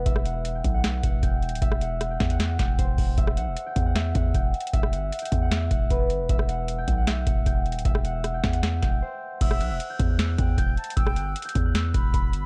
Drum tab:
CC |------------------------------------------------|------------------------------------------------|------------------------------------------------|------------------------------------------------|
HH |x-----x-----x-----x-----x-----x-----x-----x-x-x-|x-----x-----x-----x--x--x-----x-----x-----o-----|x-----x-----x-----x-----x-----x-----x-----x-x-x-|x-----x-----x-x-x-x-----x-----x-----x-----x-----|
SD |---r--------------------o-----------------------|---r--------r-----o-----o-----o-----------------|---r--------------------o-----------------------|---r--------------------o-----------------------|
BD |o-----------------o-----------o-----o-----------|o-----------------o-----------o-----o-----o-----|o-----------------o-----------o-----o-----------|o-----------------o-----------o-----o-----------|

CC |------------------------------------------------|------------------------------------------------|x-----------------------------------------------|------------------------------------------------|
HH |x-----x-----x-----x-----x-----x-----x-----x-x-x-|x-----x-----x-----x--x--x-----x-----------------|x-----x-----x-----x-----x-----x-----x-----x-x-x-|x-----x-----x-x-x-x-----x-----x-----x-----x-----|
SD |---r--------------------o-----------------------|---r--------r-----o-----o-----o-----------------|---r--------------------o-----------------------|---r--------------------o-----------------------|
BD |o-----------------o-----------o-----o-----------|o-----------------o-----------o-----------------|o-----------------o-----------o-----o-----------|o-----------------o-----------o-----o-----------|